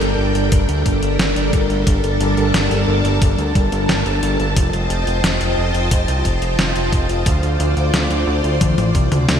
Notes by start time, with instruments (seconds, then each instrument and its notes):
Already playing: string machine G3 D4 A4 A#4 G5
0.01 analog synth bass G1, closed hi-hat
0.18 analog synth bass G1
0.35 analog synth bass G1, closed hi-hat
0.52 analog synth bass G1, kick, closed hi-hat
0.69 analog synth bass D2, closed hi-hat
0.86 analog synth bass G1, kick, closed hi-hat
1.03 analog synth bass G1, closed hi-hat
1.19 analog synth bass G1, snare, closed hi-hat
1.36 analog synth bass G1, closed hi-hat
1.53 analog synth bass G1, kick, closed hi-hat
1.70 analog synth bass G1, closed hi-hat
1.87 analog synth bass G1, string machine A5, kick, closed hi-hat
2.04 analog synth bass G1, closed hi-hat
2.20 analog synth bass G1, closed hi-hat
2.37 analog synth bass G1, closed hi-hat
2.54 analog synth bass G1, snare, closed hi-hat
2.71 analog synth bass G1, closed hi-hat
2.88 analog synth bass G1
3.05 analog synth bass G1, closed hi-hat
3.22 analog synth bass G1, kick, closed hi-hat
3.38 analog synth bass D2, closed hi-hat
3.55 analog synth bass G1, kick, closed hi-hat
3.72 analog synth bass G1, closed hi-hat
3.89 analog synth bass G1, snare, closed hi-hat
4.06 analog synth bass G1, closed hi-hat
4.23 analog synth bass G1, closed hi-hat
4.40 analog synth bass G1, closed hi-hat
4.56 analog synth bass F1, string machine F4 C5 D#5 G5, kick, closed hi-hat
4.73 analog synth bass F1, closed hi-hat
4.90 analog synth bass F1, closed hi-hat
5.07 analog synth bass F1, closed hi-hat
5.24 analog synth bass F1, snare, closed hi-hat
5.41 analog synth bass F1, closed hi-hat
5.58 analog synth bass F1
5.75 analog synth bass F1, closed hi-hat
5.91 analog synth bass F1, kick, closed hi-hat
6.08 analog synth bass C2, closed hi-hat
6.25 analog synth bass F1, kick, closed hi-hat
6.42 analog synth bass F1, closed hi-hat
6.59 analog synth bass F1, snare, closed hi-hat
6.76 analog synth bass F1, closed hi-hat
6.92 analog synth bass F1, kick, closed hi-hat
7.09 analog synth bass F1, closed hi-hat
7.26 analog synth bass D2, string machine C5 D5, kick, closed hi-hat
7.43 analog synth bass D2, closed hi-hat
7.60 analog synth bass D2, closed hi-hat
7.77 analog synth bass D2, closed hi-hat
7.94 analog synth bass D2, snare, closed hi-hat
8.10 analog synth bass D2, closed hi-hat
8.27 analog synth bass D2
8.44 analog synth bass D2, closed hi-hat
8.61 analog synth bass D2, kick, closed hi-hat, high tom
8.78 analog synth bass A1, closed hi-hat, high tom
8.95 analog synth bass C2, kick, closed hi-hat
9.12 analog synth bass D2, closed hi-hat, mid tom
9.28 analog synth bass D2, snare, closed hi-hat, mid tom